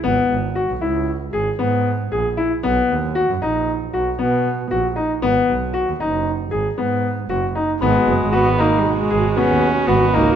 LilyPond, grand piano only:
\new Staff \with { instrumentName = "Grand piano" } { \time 5/4 \key gis \minor \tempo 4 = 116 b4 fis'8 e'4 gis'8 b4 gis'8 e'8 | b4 fis'8 dis'4 fis'8 b4 fis'8 dis'8 | b4 fis'8 dis'4 gis'8 b4 fis'8 dis'8 | b4 fis'8 dis'4 gis'8 b4 fis'8 dis'8 | }